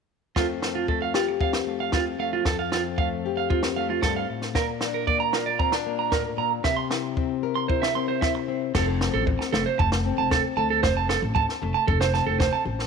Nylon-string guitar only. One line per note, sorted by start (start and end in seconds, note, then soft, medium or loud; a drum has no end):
0.37 2.44 F2 medium
0.37 3.29 F3 medium
0.37 0.88 A3 medium
0.37 0.63 C4 medium
0.37 1.14 A4 medium
0.64 1.41 C4 soft
0.89 1.66 A3 soft
1.14 2.42 G4 medium
1.41 1.92 C4 medium
1.67 2.18 A3 medium
1.93 2.71 C4 medium
2.19 2.42 A3 soft
2.45 4.03 F2 medium
2.72 3.50 C4 soft
3.00 3.76 A3 soft
3.26 4.53 G4 medium
3.51 4.56 C4 medium
3.77 4.52 A3 medium
4.04 4.29 G2 medium
4.29 4.55 A2 medium
4.54 6.36 A#2 medium
4.82 5.59 D4 medium
5.08 5.85 A#3 medium
5.34 6.65 F4 medium
5.59 5.73 C4 medium
5.73 6.65 D4 soft
5.86 6.62 A#3 medium
6.11 6.38 A2 medium
6.37 6.64 A#2 medium
6.64 8.71 C3 medium
6.90 7.69 E4 soft
7.17 7.95 C4 medium
7.43 8.71 A#4 medium
7.70 8.20 E4 medium
7.96 8.47 C4 medium
8.22 8.71 E4 medium
8.48 8.71 C4 medium
8.74 9.21 F2 medium
8.74 9.26 F3 medium
8.74 9.52 A3 medium
8.74 10.04 C4 medium
8.74 10.56 A4 medium
9.26 9.74 F3 medium
9.53 10.80 A3 medium
9.78 10.26 C3 medium
10.05 12.13 C4 medium
10.31 muted nylon-string guitar stroke medium
10.57 10.80 A4 medium
10.82 11.30 F2 medium
11.35 11.82 F3 medium
11.62 12.87 A3 medium
11.88 12.35 C3 medium
12.15 12.87 C4 medium
12.39 12.87 F3 medium
12.66 muted nylon-string guitar stroke medium